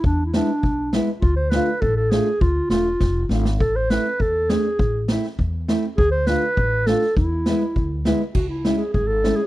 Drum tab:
CC |--------|--------|--------|--------|
SD |--o---o-|--o---o-|--o-o-oo|--o---o-|
BD |o---o---|o---o---|o---o---|o---o---|

CC |--------|--------|--------|x-------|
SD |--oo--o-|--o---oo|--o---o-|--o---o-|
BD |o---o---|o---o---|o---o---|o---o---|